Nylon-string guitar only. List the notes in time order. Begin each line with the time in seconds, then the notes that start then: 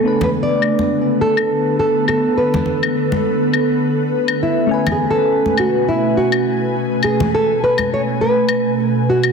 Already playing: A4
0.24 B4
0.43 D5
1.21 A4
1.79 A4
2.09 A4
2.37 B4
4.43 E4
4.92 G#4
5.10 A4
5.59 F#4
5.88 E4
6.17 F#4
7.04 G#4
7.35 A4
7.64 B4
7.94 C#5
8.21 B4
8.80 A4
9.10 F#4